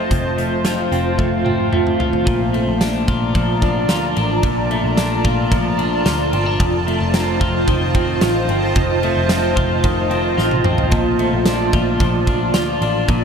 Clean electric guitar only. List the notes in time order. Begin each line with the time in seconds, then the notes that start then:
Already playing: A3 C4 F4
0.11 F2
0.37 A3
0.65 F4
0.92 C4
1.18 A3
1.45 C4
1.72 A3
2.00 F4
2.25 A#2
2.53 A3
2.81 D4
3.08 F4
3.35 F3
3.62 D4
3.89 F4
4.17 D4
4.44 A#2
4.71 A3
4.97 D4
5.24 F4
5.51 F3
5.78 D4
6.05 F4
6.33 C4
6.46 D4
6.60 F2
6.87 A3
7.14 C4
7.41 F4
7.68 D#3
7.96 C4
8.22 F4
8.50 C4
8.76 F2
9.03 A3
9.30 C4
9.56 F4
9.84 D#3
10.10 C4
10.37 F4
10.65 C4
10.92 A#2
11.19 A3
11.47 D4
11.73 F4
12.01 F3
12.28 D4
12.54 F4
12.82 D4
13.09 A#2